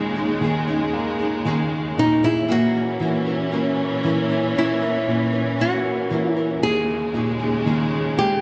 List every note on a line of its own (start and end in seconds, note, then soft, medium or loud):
0.00 2.44 D#2 medium
0.00 0.89 A#2 soft
0.00 2.44 C#3 soft
0.00 0.39 D#3 soft
0.00 1.93 G#3 medium
0.00 2.44 G#3 medium
0.00 0.16 A#3 soft
0.00 0.16 C#4 medium
0.00 0.16 D#4 medium
0.00 0.14 G#4 medium
0.16 0.41 C#4 soft
0.16 0.42 D#4 soft
0.16 0.42 G#4 soft
0.41 1.44 D#3 medium
0.41 0.68 A#3 soft
0.41 0.68 C#4 soft
0.41 0.68 D#4 medium
0.41 0.66 G#4 medium
0.68 1.21 C#4 soft
0.68 1.19 D#4 soft
0.68 1.18 G#4 soft
0.93 2.45 A#3 soft
1.19 1.45 C#4 soft
1.19 1.46 D#4 medium
1.19 1.45 G#4 soft
1.45 2.46 D#3 soft
1.45 1.97 D#3 medium
1.45 1.96 A#3 medium
1.45 1.97 C#4 medium
1.45 1.98 D#4 medium
1.45 1.98 G#4 medium
1.97 2.47 A#2 soft
1.97 2.23 A#3 soft
1.97 2.23 C#4 soft
1.97 2.23 D#4 soft
1.97 2.25 D#4 medium
1.97 2.21 G#4 medium
2.23 2.48 C#4 soft
2.23 2.49 D#4 soft
2.23 2.50 E4 medium
2.23 2.49 G#4 soft
2.48 6.58 A#2 medium
2.48 5.06 A#2 soft
2.48 6.58 E3 medium
2.48 2.98 A#3 medium
2.48 6.58 C#4 medium
2.48 2.99 C#4 medium
2.48 3.00 E4 medium
2.48 4.01 F#4 medium
2.48 3.01 A#4 medium
2.99 4.03 E3 soft
2.99 3.26 A#3 soft
2.99 3.26 C#4 soft
2.99 3.27 E4 medium
2.99 3.25 A#4 medium
3.26 3.51 C#4 soft
3.26 3.52 E4 soft
3.26 3.52 A#4 soft
3.52 4.02 A#3 medium
3.52 4.03 C#4 medium
3.52 4.54 C#4 soft
3.52 4.04 E4 medium
3.52 4.05 A#4 medium
4.03 6.07 E3 soft
4.03 4.29 A#3 soft
4.03 4.30 C#4 medium
4.03 4.30 E4 medium
4.03 4.28 A#4 medium
4.29 4.55 C#4 soft
4.29 4.56 E4 soft
4.29 4.55 A#4 soft
4.55 4.81 A#3 soft
4.55 5.58 C#4 soft
4.55 4.82 C#4 soft
4.55 4.82 E4 soft
4.55 5.61 E4 medium
4.55 4.80 A#4 medium
4.81 5.34 C#4 soft
4.81 5.33 E4 soft
4.81 5.32 A#4 soft
5.08 6.59 A#2 soft
5.33 5.59 C#4 soft
5.33 5.59 E4 soft
5.33 5.59 A#4 soft
5.59 6.09 A#3 medium
5.59 6.60 C#4 soft
5.59 6.10 C#4 medium
5.59 6.11 E4 medium
5.59 6.30 F#4 medium
5.59 6.11 A#4 medium
6.10 6.61 E3 soft
6.10 6.36 A#3 soft
6.10 6.37 C#4 soft
6.10 6.37 E4 medium
6.10 6.35 A#4 soft
6.30 6.60 E4 medium
6.36 6.62 C#4 soft
6.36 6.63 E4 soft
6.36 6.62 A#4 soft
6.62 8.41 D#2 medium
6.62 8.41 C#3 medium
6.62 7.14 D#3 medium
6.62 8.41 G#3 medium
6.62 7.13 A#3 medium
6.62 7.14 C#4 medium
6.62 7.14 D#4 medium
6.62 8.18 G#4 medium
6.62 7.15 G#4 medium
7.14 8.41 A#2 soft
7.14 7.40 A#3 soft
7.14 7.40 C#4 soft
7.14 7.40 D#4 soft
7.14 7.38 G#4 medium
7.40 7.66 C#4 soft
7.40 7.67 D#4 soft
7.40 7.66 G#4 soft
7.66 8.41 D#3 soft
7.66 8.18 D#3 medium
7.66 8.16 A#3 medium
7.66 8.17 C#4 medium
7.66 8.18 D#4 medium
7.66 8.19 G#4 medium
8.17 8.41 G#3 soft
8.17 8.41 A#3 soft
8.17 8.41 C#4 soft
8.17 8.41 D#4 medium
8.17 8.41 G4 medium
8.17 8.41 G#4 medium